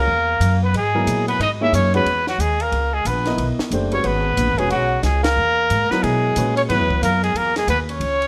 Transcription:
Already playing: A#3 A#4
0.07 E2
0.40 F#2, hi-hat pedal, ride
0.62 B3 B4
0.73 G#2 G#3 G#4, ride
0.95 F#3 B3 E4 A#4
1.07 A#2, hi-hat pedal, ride
1.28 B3 B4, ride
1.39 G#2 D#4 D#5, ride
1.61 A#3 D#4 E4 G#4 C#5 E5
1.72 F#2 C#4 C#5, hi-hat pedal, ride
1.94 G#3 B3 C#4 F#4 B4 C#5, ride
2.05 E2, ride
2.27 F#3 F#4, snare
2.38 D#2 G#3 G#4, hi-hat pedal, ride
2.60 A#3 A#4, ride
2.72 C#2, ride
2.94 G#3 G#4
3.05 A#1 B3 B4, hi-hat pedal, ride
3.25 B3 E4 A#4 D#5, snare, ride
3.38 B1, ride
3.58 muted upright bass stroke, snare
3.71 F#1 A3 D4 G4 C5, hi-hat pedal, ride
3.92 G#3 C#4 F#4 B4 C#5, ride
4.04 G#1 B3 B4, ride
4.37 A#1, hi-hat pedal, ride
4.48 G#1
4.57 E1 G#3 C#4 F#4 G#4 B4, ride
4.70 B1 F#3 F#4, ride
5.02 C#2 G#3 G#4, snare, hi-hat pedal, ride
5.23 A#3 A#4, snare, ride
5.36 E2
5.70 G#2, hi-hat pedal, ride
5.89 F#3 B3 E4 B4, muted upright bass stroke, snare
5.93 A#4
6.02 B2 G#3 G#4, ride
6.36 A#2 G#3 C#4 F#4 B4, hi-hat pedal, ride
6.56 C#4 C#5, ride
6.68 G#2 F#3 B3 E4 B4, ride
6.80 E2
6.90 C#2, kick
7.02 F#2 A#3 A#4, hi-hat pedal, ride
7.23 G#3 G#4, ride
7.34 E2 A#3 A#4, ride
7.56 G#3 G#4, snare, ride
7.67 D#2 B3 B4, hi-hat pedal, ride
7.89 C#4 C#5, ride
8.00 C#2, ride
8.22 ride

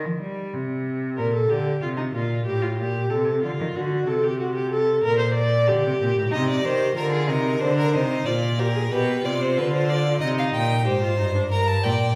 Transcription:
0.05 F3
0.21 G3
0.53 C3
1.17 A#2 A#4
1.34 A4
1.50 D3 G4
1.82 C3 F4
1.97 D#4
2.14 A#2 F4
2.46 A2 G4
2.62 F4
2.79 A#2 G4
3.10 C3 A4
3.43 D3 F4
3.60 D#3
3.75 D3 F#4
4.08 C3 A4
4.24 G4
4.40 F#4
4.55 G4
4.72 A4
5.04 A#2 A#4
5.19 C5
5.35 D5
5.68 D3 G4
5.85 C3
6.01 A#2
6.17 A2
6.32 C3 D#4 D#5
6.48 D5
6.64 D#3 G4 C5
6.96 D3 F4 A#4
7.12 G#4
7.28 C3 D#4 A#4
7.61 D3 D4 C5
7.78 A#4
7.93 C3 D#4 C5
8.26 A#2 F4 D5
8.59 G4 A#4
8.75 G#4
8.92 B2 G4 B4
9.24 C3 F4 D5
9.41 C5
9.57 D3 B4
9.73 C5
9.89 D5
10.21 C3 D#4 D#5
10.38 F5
10.54 A#2 G5
10.86 G#2 G4 C5
11.03 F4
11.19 G2 D#4
11.35 D4
11.51 G2 A#4 A#5
11.68 A5
11.84 A#2 D5 G5

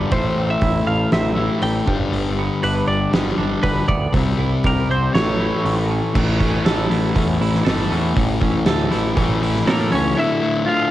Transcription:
Already playing: D3 G3 B3 D4 D5
0.11 A1 A2 E3 A3 C5, kick, open hi-hat
0.36 A1 C4
0.50 E5
0.61 A1 E4, kick, open hi-hat
0.87 A1 A3 F5
1.12 A1 C4 E5, snare, open hi-hat
1.35 A2 E3 A3 E4
1.59 A1 A2 E3 A3 G5, open hi-hat
1.85 G1 G2 D3 G3, kick
2.12 G1 G2, open hi-hat
2.38 B3
2.63 G1 D4 B4, open hi-hat
2.87 G1 G3 D5
3.11 G1 G2 D3 B3, snare, open hi-hat
3.15 G3
3.37 G1 G2 D3 G3 D4
3.63 G1 G3 B4, kick, open hi-hat
3.88 D2 B3 D5, kick
4.12 C2 C3 G3 C4, kick, open hi-hat
4.38 C2 E4
4.64 C2 G4 A#4, kick, open hi-hat
4.89 C2 C4 C5
5.13 A1 A2 E3 A3 C#5, snare, open hi-hat
5.40 E4
5.65 A1 A3, open hi-hat
5.91 C#4
6.14 A1 A2 E3 A3, kick, crash
6.39 A2 E3 A3 C#4, kick, open hi-hat
6.65 A1 A2 E3 A3 A4, snare, open hi-hat
6.89 A1 A2 E3 A3 E4, open hi-hat
7.14 E2 A2 E3 A3 C#4, kick, open hi-hat
7.40 A1 A2 E3 A3 E4, open hi-hat
7.54 snare
7.65 G1 A2 E3 A3 A4, snare, open hi-hat
7.90 E2 A2 E3 A3 C#4, open hi-hat
8.15 A1 A2 E3 A3, kick, open hi-hat
8.41 A1 A2 E3 A3 C#4, kick, open hi-hat
8.65 D2 A2 E3 A3 A4, snare, open hi-hat
8.89 A2 E3 A3 E4, snare, open hi-hat
8.93 A1
9.16 A1 A2 E3 A3 C#4, kick, open hi-hat
9.41 A1 A2 E3 A3 E4, open hi-hat
9.56 snare
9.67 A2 E3 A3 A#3 A4 A#4, snare, open hi-hat
9.92 C#2 A2 E3 A3 C#4 C#5, open hi-hat
10.16 D2 A2 D3 E4 E5
10.41 D2 A2 D3
10.66 D2 A2 D3 F4 F5

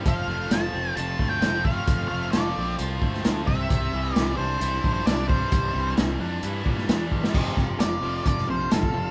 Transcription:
Already playing: C4
0.05 F1 F3 F5, kick, closed hi-hat
0.28 F1 A3
0.51 F1 F3 A5, snare, closed hi-hat
0.73 F1 C4
0.96 F1 F3 F4 A5, closed hi-hat
1.19 D2 A3 C4, kick
1.29 G5
1.41 F1 F3 C4, snare, closed hi-hat
1.64 A3 F5, kick
1.88 F1 F3, kick, closed hi-hat
2.08 F1 A3 F5
2.32 F1 F3 D5, snare, closed hi-hat
2.56 A#1 C4
2.78 C2 F3 F4, closed hi-hat
3.01 D2 A3 C4, kick
3.14 snare
3.24 D2 F3 C4, snare, closed hi-hat
3.47 C2 C3 E5, kick
3.70 C2 C3, kick, closed hi-hat
3.92 C2 E3 G3
4.14 C2 E3 D5, snare, closed hi-hat
4.37 C2 D4 C5
4.61 C2 E3 E4, closed hi-hat
4.84 A#1 G3 D4, kick
4.94 C5
5.06 C2 E3 D4 D5, snare, closed hi-hat
5.28 G3 C5, kick
5.52 C2 C3, kick, closed hi-hat
5.75 C2 E3 G3
5.97 C2 E3, snare, closed hi-hat
6.20 F2 D4
6.43 G2 E3 E4, closed hi-hat
6.66 A#2 G3 D4, kick
6.78 snare
6.88 E2 E3 D4, snare, closed hi-hat
7.11 G3, kick
7.24 snare
7.33 F1 F2 C3 F3 F4 A4 C5 F5, kick, crash
7.57 F1 F2 C3, kick, snare
7.79 F1 F2 C3 D5, snare, closed hi-hat
8.02 F1 F2 C3 F3
8.24 F1 F2 C3 D5, kick, closed hi-hat
8.38 snare
8.47 A#1 F2 C3 C5
8.70 F1 F2 C3 A4, snare, closed hi-hat
8.83 kick
8.94 F1 F2 C3

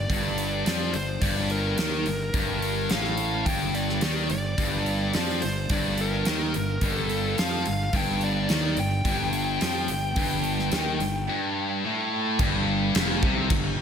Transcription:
Already playing: D5
0.09 G1 G2, kick, open hi-hat
0.38 open hi-hat
0.66 F2 F3 D5, snare, open hi-hat
0.93 G1 G2 C5, open hi-hat
1.22 G1 G2 D5, kick, open hi-hat
1.50 A#4, open hi-hat
1.78 D#2 D#3, snare, open hi-hat
2.06 G1 G2, open hi-hat
2.34 G1 G2, kick, open hi-hat
2.62 open hi-hat
2.90 A1 A2 F5, snare, open hi-hat
3.05 snare
3.17 open hi-hat
3.46 G1 G2 G5, kick, open hi-hat
3.75 D5, open hi-hat
3.89 snare
4.01 D#2 D#3, snare, open hi-hat
4.30 G1 G2 D5, open hi-hat
4.58 G1 G2, kick, open hi-hat
4.86 open hi-hat
5.14 F2 F3 D5, snare, open hi-hat
5.29 snare
5.42 G1 G2 C5, open hi-hat
5.69 G1 G2 D5, kick, open hi-hat
5.98 A#4, open hi-hat
6.25 D#2 D#3, snare, open hi-hat
6.54 G1 G2, open hi-hat
6.81 G1 G2, kick, open hi-hat
6.94 A4
7.09 open hi-hat
7.38 F2 F3 F5, snare, open hi-hat
7.66 G1 G2, open hi-hat
7.93 G1 G2 G5, kick, open hi-hat
8.21 D5, open hi-hat
8.49 D#2 D#3, snare, open hi-hat
8.77 G1 G2 G5, open hi-hat
9.05 G1 G2, kick, open hi-hat
9.33 open hi-hat
9.61 F2 F3, snare, open hi-hat
9.88 G1 G2, open hi-hat
10.16 G1 G2, kick, open hi-hat
10.44 open hi-hat
10.59 snare
10.72 D#2 D#3, snare, open hi-hat
11.00 G1 G2, open hi-hat
11.30 G2
11.85 A2
12.39 G1 G2, kick, crash
12.95 F1 F2, snare, crash
13.23 C2 C3, kick
13.50 G1 G2, kick, crash

